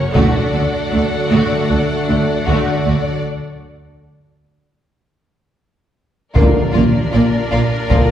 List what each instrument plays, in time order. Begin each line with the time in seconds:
Already playing: string section C#4 F#4 A#4 F#5, violin section C#5
0.14 cello section D2, double bass section D2, trombone section D3 F#3, viola section A3, french horn section A3 F#4, string section D4 F#4 A4 F#5, violin section F#4 D5, taiko
0.52 cello section D2, double bass section D2, viola section A3, violin section F#4
0.91 cello section D2, double bass section D2, viola section A3, violin section D4
1.30 cello section D2, double bass section D2, viola section A3, violin section F#4
1.69 cello section D2, double bass section D2, viola section A3, violin section F#4
2.08 cello section D2, double bass section D2, viola section A3, violin section D4
2.47 cello section D2, double bass section D2, viola section A3, violin section F#4
2.86 cello section D2, double bass section D2, viola section A3, violin section F#4
6.35 double bass section A#1, timpani A#2, cello section A#2, trombone section D3 F3, french horn section A#3 A#4, viola section A#3, string section D4 F4 A#4 D5, violin section F4 D5, taiko
6.72 double bass section A#1, cello section A#2, viola section A#3, violin section F4 D5, taiko mid
7.12 double bass section A#1, cello section A#2, viola section A#3, violin section F4 D5
7.51 double bass section A#1, cello section A#2, viola section A#3, violin section F4 D5
7.89 double bass section A#1, cello section A#2, trombone section D3 F3, french horn section A#3 A#4, viola section A#3, violin section F4 D5, taiko